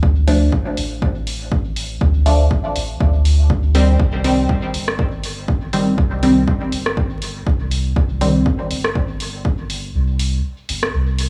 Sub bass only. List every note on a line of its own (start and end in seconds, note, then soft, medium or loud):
0.03 0.49 D2 medium
0.77 1.98 A1 medium
2.01 2.47 D2 loud
2.76 2.96 A1 loud
3.00 3.96 D2 medium
4.00 4.46 C2 loud
4.74 5.94 G1 loud
5.98 6.44 C2 loud
6.72 7.43 G1 loud
7.47 7.93 C2 loud
7.96 8.42 C2 loud
8.71 9.91 G1 loud
9.95 10.41 C2 medium
10.69 10.89 G1 medium
10.94 11.29 C2 medium